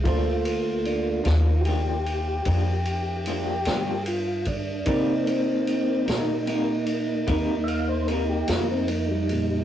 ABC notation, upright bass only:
X:1
M:12/8
L:1/8
Q:3/8=50
K:Gm
V:1 name="Upright bass" clef=bass
D,,3 E,,3 F,,3 G,,3 | C,3 B,,3 E,,3 F,,3 |]